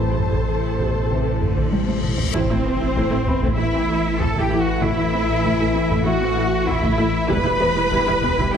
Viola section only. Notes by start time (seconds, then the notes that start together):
Already playing: A4 C5
2.34 A3 E4
2.50 A3 E4
2.65 E3 C4
2.81 A3 E4
2.96 A3 E4
3.11 A3 E4
3.28 E3 C4
3.42 A3 E4
3.58 A3 E4
3.74 E3 C4
3.89 A3 E4
4.20 E3 C4
4.36 A3 E4
4.52 A3 E4
4.82 A3 E4
4.98 A3 E4
5.13 E3 C4
5.29 A3 E4
5.44 A3 E4
5.60 A3 E4
5.74 E3 C4
5.89 A3 E4
6.05 A3 E4
6.21 E3 C4
6.36 A3 E4
6.67 E3 C4
6.82 A3 E4
6.98 A3 E4
7.29 G3 E4
7.45 G3 E4
7.60 E3 B3
7.76 G3 E4
7.92 G3 E4
8.07 G3 E4
8.22 E3 B3
8.38 G3 E4
8.53 G3 E4